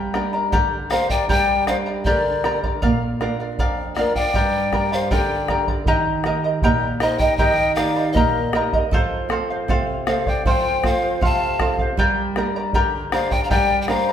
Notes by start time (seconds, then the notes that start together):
Already playing: G3 G4 A#4 D5 G5 A#5
0.14 D4 G4 A#4 D5 G5 A#5, bombo rim
0.33 A#4 D5 A#5
0.52 D3 G4 A#4 D5 G5 A#5, bombo low
0.90 D4 G4 A#4 C5 D5 F5 G5 A#5, bombo rim
1.09 A#4 D5 G5 A#5, bombo low
1.29 G3 G4 A#4 D5 G5 A#5, bombo low
1.67 D4 G4 A#4 C5 D5 F5 G5 A#5, bombo rim
1.86 A#4 D5 A#5
2.05 D3 G4 A#4 D5 G5 A#5, bombo low
2.44 D4 G4 A#4 D5 G5 A#5, bombo rim
2.63 A#4 D5 A#5, bombo low
2.82 A#2 A#4 D5 F5, bombo low
3.21 D4 F4 A#4 D5 F5, bombo rim
3.40 D5 F5
3.59 F2 A#4 D5 F5, bombo low
3.96 D4 F4 A#4 D5 F5, bombo rim
4.15 D5 F5 G5, bombo low
4.34 G2 G4 A#4 D5 G5 A#5, bombo low
4.73 D4 G4 A#4 D5 G5 A#5, bombo rim, bombo low
4.92 A#4 C5 D5 F5 A#5
5.11 D3 G4 A#4 D5 G5 A#5, bombo low
5.48 D4 G4 A#4 D5 G5 A#5, bombo rim, bombo low
5.67 A#4 D5 A#5, bombo low
5.86 D#3 G4 A#4 D#5 G5 A#5, bombo low
6.24 D#4 G4 A#4 D#5 G5 A#5, bombo rim
6.44 A#4 D#5 A#5
6.62 A#2 G4 A#4 D#5 G5 A#5, bombo low
7.00 D#4 G4 A#4 C5 D#5 G5 A#5, bombo rim
7.18 A#4 D#5 G5 A#5, bombo low
7.37 D#3 G4 A#4 D#5 G5 A#5, bombo low
7.75 D#4 G4 A#4 D5 D#5 F5 G5 A#5, bombo rim
7.96 A#4 D#5 A#5
8.13 A#2 G4 A#4 D#5 G5, bombo low
8.17 D#5 A#5
8.53 D#4 G4 A#4 D#5 G5 A#5, bombo rim
8.73 A#4 D#5 A#5, bombo low
8.91 F3 A4 C5 F5, bombo low
9.29 C4 F4 A4 C5 F5, bombo rim
9.50 C5 F5
9.68 C3 A4 C5 F5, bombo low
10.07 C4 F4 A4 C5 F5, bombo rim
10.26 C5 D5 F5 G5, bombo low
10.45 F3 A4 C5 F5 G5, bombo low
10.83 C4 F4 A4 C5 F5, bombo rim, bombo low
10.87 C5
11.02 C5 F5
11.21 C3 A4 C5 F5 A5, bombo low
11.60 C4 F4 A4 C5 F5, bombo rim, bombo low
11.78 C5 F5, bombo low
11.97 G3 G4 A#4 D5 G5 A#5, bombo low
12.36 D4 G4 A#4 D5 G5 A#5, bombo rim
12.56 A#4 D5 A#5
12.73 D3 G4 A#4 D5 G5 A#5, bombo low
13.12 D4 G4 A#4 C5 D5 F5 G5 A#5, bombo rim
13.31 A#4 D5 G5 A#5, bombo low
13.44 F5 A#5
13.51 G3 G4 A#4 D5 G5 A#5, bombo low
13.82 D5 G5
13.88 D4 G4 A#4 C5 D5 F5 G5 A#5, bombo rim
14.09 A#4 D5 A#5